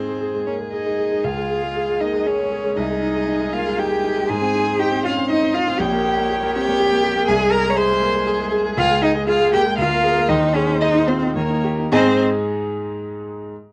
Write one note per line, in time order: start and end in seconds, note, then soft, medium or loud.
0.00 1.20 G#2 soft
0.00 0.09 G#3 soft
0.00 0.42 C4 medium
0.00 0.16 G#4 soft
0.00 2.72 G#4 soft
0.00 0.42 C5 medium
0.09 0.29 G#3 soft
0.21 0.42 G#4 soft
0.34 0.54 G#3 soft
0.46 0.60 A#3 soft
0.46 0.55 C#4 medium
0.46 0.54 C#5 medium
0.60 0.81 G#3 soft
0.72 1.26 D#4 medium
0.72 0.93 G#4 soft
0.72 1.26 D#5 medium
0.86 1.06 G#3 soft
0.99 1.19 G#4 soft
1.11 1.24 G#3 soft
1.24 2.73 C#2 medium
1.24 2.02 F4 medium
1.24 2.02 F5 medium
1.37 1.57 G#3 soft
1.50 1.70 G#4 soft
1.62 1.83 G#3 soft
1.75 1.96 G#4 soft
1.89 2.09 G#3 soft
2.00 2.14 A#3 soft
2.00 2.28 D#4 medium
2.00 2.28 D#5 medium
2.13 2.33 G#3 medium
2.26 2.76 C#4 medium
2.26 2.46 G#4 soft
2.26 2.78 C#5 medium
2.39 2.59 G#3 soft
2.52 2.72 G#4 soft
2.64 2.77 G#3 medium
2.77 4.25 C2 medium
2.77 3.54 D#4 medium
2.77 4.26 G#4 medium
2.77 3.55 D#5 medium
2.90 3.10 G#3 soft
3.03 3.23 D#4 medium
3.15 3.35 G#3 soft
3.28 3.48 D#4 medium
3.41 3.61 G#3 medium
3.53 3.66 A#3 medium
3.53 3.80 F4 medium
3.53 3.80 F5 medium
3.66 3.86 G#3 medium
3.78 3.99 D#4 medium
3.78 4.31 G4 medium
3.78 4.28 G5 medium
3.91 4.11 G#3 medium
4.03 4.24 D#4 medium
4.17 4.29 G#3 medium
4.28 5.76 G#2 medium
4.28 4.81 G#4 loud
4.28 5.77 C5 medium
4.28 4.78 G#5 loud
4.41 4.62 C4 medium
4.54 4.74 D#4 medium
4.66 4.86 C4 medium
4.78 4.99 D#4 medium
4.78 5.04 G4 loud
4.78 5.04 G5 medium
4.91 5.12 C4 medium
5.04 5.17 C#4 medium
5.04 5.12 F4 loud
5.04 5.29 F5 loud
5.17 5.37 C4 medium
5.29 5.50 D#4 medium
5.29 5.56 D#4 loud
5.29 5.56 D#5 medium
5.42 5.63 C4 medium
5.55 5.75 D#4 medium
5.55 5.81 F4 loud
5.55 5.82 F5 loud
5.68 5.80 C4 medium
5.79 7.24 A#1 medium
5.79 6.53 G4 loud
5.79 7.24 C#5 medium
5.79 6.55 G5 medium
5.93 6.12 A#3 medium
6.05 6.25 G4 medium
6.17 6.37 A#3 medium
6.30 6.50 G4 medium
6.42 6.62 A#3 medium
6.53 6.67 C4 medium
6.53 7.26 G4 loud
6.53 7.29 G5 loud
6.68 6.87 A#3 medium
6.80 6.99 G4 medium
6.92 7.11 A#3 medium
7.04 7.23 G4 medium
7.16 7.28 A#3 medium
7.27 8.74 C2 medium
7.27 7.53 G#4 loud
7.27 9.74 G#4 medium
7.27 7.54 G#5 loud
7.40 7.60 G#3 medium
7.52 7.72 G#4 medium
7.52 7.72 A#4 loud
7.52 7.78 A#5 loud
7.65 7.85 G#3 medium
7.70 7.78 C#5 medium
7.77 7.97 G#4 medium
7.77 8.52 C5 loud
7.77 8.52 C6 loud
7.90 8.10 G#3 medium
8.02 8.14 A#3 medium
8.14 8.35 G#3 medium
8.27 8.47 G#4 medium
8.39 8.60 G#3 medium
8.52 8.72 G#4 medium
8.65 8.78 G#3 medium
8.77 9.75 C#2 medium
8.77 9.01 F4 loud
8.77 9.04 F5 loud
8.91 9.11 G#3 medium
9.02 9.11 D#4 loud
9.02 9.23 G#4 medium
9.02 9.27 D#5 medium
9.15 9.35 G#3 medium
9.28 9.53 F4 loud
9.28 9.48 G#4 medium
9.28 9.52 F5 loud
9.40 9.61 G#3 medium
9.53 9.66 A#3 medium
9.53 9.61 G4 loud
9.53 9.77 G5 loud
9.66 9.79 G#3 medium
9.78 10.28 D2 medium
9.78 10.30 F4 loud
9.78 10.26 A#4 medium
9.78 10.28 F5 loud
9.91 10.11 A#3 medium
10.04 10.24 G#4 medium
10.16 10.29 A#3 medium
10.29 11.32 D#2 medium
10.29 10.57 D#4 loud
10.29 11.32 C5 medium
10.29 10.37 D#5 loud
10.43 10.64 D#4 medium
10.55 10.81 C#4 loud
10.55 10.77 G#4 medium
10.55 10.63 C#5 medium
10.69 10.90 D#4 medium
10.81 11.09 D#4 loud
10.81 11.03 G#4 medium
10.81 10.89 D#5 medium
10.95 11.17 D#4 medium
11.08 11.35 C4 loud
11.08 11.22 F4 medium
11.08 11.16 C5 medium
11.22 11.36 D#4 medium
11.35 11.89 D#2 medium
11.35 11.90 A#3 medium
11.35 11.90 A#4 medium
11.35 11.68 C#5 medium
11.49 11.72 D#4 medium
11.64 11.86 G4 medium
11.78 11.90 D#4 medium
11.91 12.21 G#2 medium
11.91 12.21 G#3 loud
11.91 12.21 C4 loud
11.91 12.21 D#4 loud
11.91 12.21 G#4 medium
11.91 12.21 C5 loud
11.91 12.21 D#5 medium
11.91 12.21 D#5 loud
11.91 12.21 G#5 loud